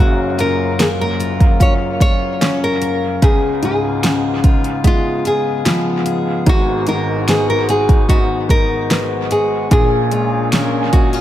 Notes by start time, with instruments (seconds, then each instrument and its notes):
Already playing: steel-string acoustic guitar C#4 F4 A#4
0.00 upright piano F#1 F#2, harmonium F#2 F#3 A#3 F5, steel-string acoustic guitar F#2, nylon-string guitar F#4
0.38 upright piano C#3, steel-string acoustic guitar F4, nylon-string guitar A#4, closed hi-hat
0.79 upright piano A#3, nylon-string guitar G#4, steel-string acoustic guitar A#4, snare, closed hi-hat
1.01 nylon-string guitar A#4
1.20 steel-string acoustic guitar F4, closed hi-hat
1.40 kick, closed hi-hat
1.60 steel-string acoustic guitar C#4, upright piano F4, nylon-string guitar C#5, kick, closed hi-hat
2.00 steel-string acoustic guitar F4, nylon-string guitar C#5, kick, closed hi-hat
2.41 upright piano C#4, steel-string acoustic guitar C#4, snare, closed hi-hat
2.64 nylon-string guitar A#4
2.82 steel-string acoustic guitar A#4, closed hi-hat
3.22 upright piano C#2, steel-string acoustic guitar C#3, harmonium C#3 G#3 B3, nylon-string guitar G#4, kick, closed hi-hat
3.62 upright piano G#2, steel-string acoustic guitar F4, nylon-string guitar G#4, closed hi-hat
4.03 upright piano C#3, steel-string acoustic guitar G#4, snare, closed hi-hat
4.20 nylon-string guitar F#4
4.44 steel-string acoustic guitar F4, kick, closed hi-hat
4.64 closed hi-hat
4.84 upright piano G#3, steel-string acoustic guitar B3, nylon-string guitar F4, kick, closed hi-hat
5.25 steel-string acoustic guitar F4, nylon-string guitar G#4, closed hi-hat
5.65 upright piano F3, steel-string acoustic guitar B3, snare, closed hi-hat
6.06 steel-string acoustic guitar G#4, closed hi-hat
6.46 upright piano G#1 G#2, harmonium G#2 F#4, steel-string acoustic guitar G#3, nylon-string guitar F#4, kick, closed hi-hat
6.87 upright piano D#3, steel-string acoustic guitar D#4, nylon-string guitar A#4, closed hi-hat
7.28 upright piano B3, steel-string acoustic guitar F#4, nylon-string guitar G#4, snare, closed hi-hat
7.50 nylon-string guitar A#4
7.69 steel-string acoustic guitar D#4, nylon-string guitar G#4, closed hi-hat
7.89 kick, closed hi-hat
8.09 steel-string acoustic guitar B3, upright piano D#4, nylon-string guitar F#4, kick, closed hi-hat
8.49 steel-string acoustic guitar D#4, nylon-string guitar A#4, kick, closed hi-hat
8.90 upright piano B3, steel-string acoustic guitar B3, snare, closed hi-hat
9.31 steel-string acoustic guitar F#4, nylon-string guitar G#4, closed hi-hat
9.71 upright piano A#1 A#2, steel-string acoustic guitar A#2, harmonium A#2 A#3 C#4 G#4, nylon-string guitar G#4, kick, closed hi-hat
10.11 upright piano G#3, steel-string acoustic guitar F4, closed hi-hat
10.52 upright piano C#4, steel-string acoustic guitar A#4, snare, closed hi-hat
10.93 steel-string acoustic guitar D#4, nylon-string guitar F#4, kick, closed hi-hat
11.13 steel-string acoustic guitar F4, closed hi-hat